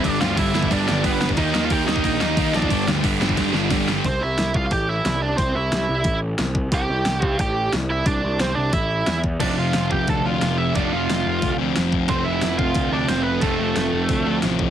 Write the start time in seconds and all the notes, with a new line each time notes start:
0.03 G1 G2 D3 G3 B3 D4 D5, kick, ride
0.20 D2 G2 D3 G3 B3 D4 F4 F5, snare
0.37 G1 G2 D3 G3 B3 D4 E4 E5, kick, ride
0.54 G1 G2 D3 G3 B3 D4, snare
0.63 kick
0.70 G1 G2 D3 G3 B3 D4 D5, kick, ride
0.87 G1 G2 D3 G3 B3 D4 D5, snare
1.03 G1 G2 D3 G3 B3 D4 B4, kick, ride
1.19 G2 D3 G3 B3 D4, snare
1.29 kick
1.36 D#2 D#3 G3 A#3 D#4 D#5, kick, ride
1.53 D#2 D#3 G3 A#3 D#4, snare
1.63 F4 F5
1.69 D#2 D#3 G3 A#3 D#4 G4, kick, ride
1.73 G5
1.86 D#2 G3 A#3 D#4 D#5, snare
1.90 D#3
1.96 kick
2.04 A#1 D#3 G3 A#3 D#4, kick, ride
2.21 D#2 D#3 G3 A#3 D#4, snare
2.36 D#3 G3 A#3 D#4, kick, ride
2.52 A#1 D#3 G3 A#3 D4 D#4, snare
2.57 D5
2.62 kick
2.69 G1 G2 D3 G3 B3 D4, kick, ride
2.87 D2 G2 D3 G3 B3 D4, snare
3.03 G1 G2 D3 G3 B3 D4, kick, ride
3.19 G1 G2 D3 G3 B3 D4, snare
3.29 kick
3.35 G1 G2 D3 G3 B3 D4, kick, snare, ride
3.53 G1 G2 D3 G3 B3 D4, snare
3.69 G1 G2 D3 G3 B3 D4, kick, snare, ride
3.86 G2 D3 G3 B3 D4, snare
4.05 C2 C4 C5, kick, open hi-hat
4.21 C2 E4 E5
4.38 C2, snare, open hi-hat
4.54 C2 F4 F5, kick
4.66 F5
4.71 A1 G4 G5, kick, open hi-hat
4.89 E4 E5
5.05 C2, snare, open hi-hat
5.22 D4 D5
5.37 C2 C4 C5, kick, open hi-hat
5.55 C2 E4 E5
5.72 C2, snare, open hi-hat
5.89 C2
6.04 A1, kick, open hi-hat
6.38 C2, snare, open hi-hat
6.55 kick
6.72 C2 G4 G5, kick, open hi-hat
6.90 C2
7.05 C2, snare, open hi-hat
7.22 C2 F5, kick
7.39 A1 G4 G5, kick, open hi-hat
7.73 C2, snare, open hi-hat
7.90 E4 E5
8.05 C2 D4 D5, kick, open hi-hat
8.24 C2
8.40 C2 C4 C5, snare, open hi-hat
8.54 C2 D4 D5
8.73 A1 E4 E5, kick, open hi-hat
9.06 E2, snare, open hi-hat
9.24 kick
9.39 F1 F2 C3 F3 D4 D5, kick, crash
9.58 F1 F4 F5
9.73 F1, snare, open hi-hat
9.91 F1 G4 G5, kick
10.07 D2 A4 A5, kick, open hi-hat
10.25 F2 C3 F3 F4 F5
10.41 F1 F2 C3, snare, open hi-hat
10.46 F3
10.58 E4 E5
10.75 F1 F2 C3 F3 D4 D5, kick, open hi-hat
10.93 F1 F4 F5
11.09 F1, snare, open hi-hat
11.26 F1
11.42 D2, kick, open hi-hat
11.58 F2 C3 F3
11.75 F1 F2 C3, snare, open hi-hat
11.79 F3
11.92 kick
12.08 F1 F2 C3 C4 C5, kick, open hi-hat
12.13 F3
12.24 F1 E4 E5
12.42 F1, snare, open hi-hat
12.58 F1 F4 F5, kick
12.75 D2, kick, open hi-hat
12.92 F2 C3 F3 D4 D5
13.08 F1 F2 C3 F3 C4 C5, snare, open hi-hat
13.23 B3 B4
13.41 F1 F2 C3 A3 A4, kick, open hi-hat
13.45 F3
13.60 F1
13.76 F1, snare, open hi-hat
13.93 F1
14.09 D2, kick, open hi-hat
14.25 F2 C3 F3
14.42 A1 F2 C3 F3, snare, open hi-hat
14.59 kick